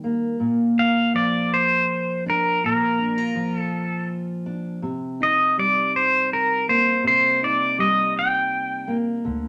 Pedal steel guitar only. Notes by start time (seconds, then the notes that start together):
0.79 F5
1.16 D5
1.54 C5
2.30 A#4
2.66 A#4
3.58 A4
5.23 D#5
5.59 D5
5.96 C5
6.33 A#4
6.69 C5
7.07 C5
7.44 D5
7.80 D#5
8.19 G5